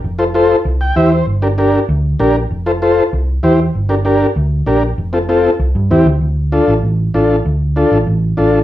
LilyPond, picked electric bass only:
\new Staff \with { instrumentName = "Picked electric bass" } { \clef bass \time 4/4 \key d \minor \tempo 4 = 194 f,,2 c,4 e,4 | g,,2 d,4 bes,,4 | f,,2 c,4 e,4 | g,,2 d,4 bes,,4 |
f,,2 c,8 g,8 e,8 d,8 | d,4. a,,8 a,,4 a,,4 | d,4. a,,8 a,,4 a,,4 | }